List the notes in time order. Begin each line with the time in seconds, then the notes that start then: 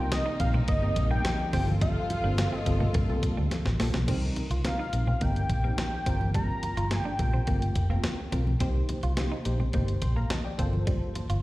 Already playing: C2 C3 G3 A#3 C4 D#4
0.00 A#4
0.11 D#5, snare, closed hi-hat, high conga
0.26 D#4
0.40 A#1 G3 A#3 C4 D#4 A#4 F5, muted clean electric guitar stroke, kick, closed hi-hat
0.54 C4, low conga
0.68 G1 A#3 D#5, kick, closed hi-hat, muted conga
0.82 G3 A#3 C4 D#4 A#4
0.96 A#1, muted clean electric guitar stroke, kick, closed hi-hat
1.11 A#3 G5
1.25 snare, closed hi-hat, high conga
1.39 high conga
1.53 G1 G3 A#3 C4 F4 A4 G5, kick, open hi-hat
1.68 high conga
1.81 G3 F5, kick, closed hi-hat, muted conga
2.10 muted clean electric guitar stroke, closed hi-hat, muted conga
2.24 G1 G3 A#3 C4 D4 F4 C5
2.38 snare, closed hi-hat, high conga
2.52 C4
2.57 D#5
2.66 G1 G3 A#3 C4 F4 A4, muted clean electric guitar stroke, kick, closed hi-hat
2.80 A#3, low conga
2.94 G2 A#3, kick, closed hi-hat, muted conga, low conga
3.09 C2 G3 A3 C4 F4 A4
3.15 A#3
3.23 muted clean electric guitar stroke, kick, closed hi-hat
3.37 D2 G3
3.51 snare, closed hi-hat, high conga
3.65 A1, snare
3.79 A#1 G3 A#3 C4 F4 A4, snare, open hi-hat
3.94 B1, snare, high conga
4.08 C2 G3 C4 D#4 A#4, kick, closed hi-hat, crash, muted conga
4.36 muted clean electric guitar stroke, closed hi-hat, muted conga
4.50 C2 F4, closed hi-hat
4.64 G3 C4 D#4 A#4 F5, snare, closed hi-hat, high conga
4.79 D#4
4.93 A#1 G3 C4 D#4 A#4, muted clean electric guitar stroke, closed hi-hat
5.07 C4, low conga
5.21 G1 G3 A#3 C4 D#4 A#4 G5, kick, closed hi-hat, muted conga, low conga
5.36 closed hi-hat
5.49 A#1, muted clean electric guitar stroke, kick, closed hi-hat
5.63 G3 A#3 C4 D#4 A#4
5.78 G5, snare, closed hi-hat, high conga
6.06 G1 A#3 C4 F4 A#4, kick, closed hi-hat
6.21 high conga
6.34 G3 A#5, kick, closed hi-hat, muted conga
6.63 muted clean electric guitar stroke, closed hi-hat, muted conga
6.77 G1 F4, closed hi-hat
6.91 A3 C4 F4 A#4 G5, snare, closed hi-hat, high conga
7.05 D4
7.19 A#1 A3 C4 F4 A#4, muted clean electric guitar stroke, kick, closed hi-hat
7.33 C4, low conga
7.47 G1 A3 A#3 C4 F4 A#4, kick, closed hi-hat, muted conga
7.62 closed hi-hat
7.75 F1, muted clean electric guitar stroke, kick, closed hi-hat
7.89 A3 A#3 C4 F4 A#4
8.04 snare, closed hi-hat, high conga
8.32 B1 A3 C4 F4 A#4, kick, closed hi-hat
8.47 high conga
8.60 C2 A#3 C4 D#4 G4 C5, kick, closed hi-hat, muted conga
8.89 muted clean electric guitar stroke, closed hi-hat, muted conga
9.03 C2 F4, closed hi-hat
9.17 A#3 D#4 G4 C5, snare, closed hi-hat, high conga
9.32 D#4
9.45 A#1 A#3 D#4 G4 C5, muted clean electric guitar stroke, closed hi-hat
9.59 C4, low conga
9.73 G1 A#3 D#4 G4 C5, kick, closed hi-hat, muted conga, low conga
9.88 closed hi-hat
10.02 A#1 G5 C6, muted clean electric guitar stroke, kick, closed hi-hat
10.16 A#3 F5 A#5
10.30 D#5 A5, snare, closed hi-hat, high conga
10.45 D5 G5
10.58 G1 A#3 C4 F4 A4 C5, kick, closed hi-hat
10.73 high conga
10.87 G3, kick, closed hi-hat, muted conga
11.15 muted clean electric guitar stroke, closed hi-hat, muted conga
11.30 G1 F4, closed hi-hat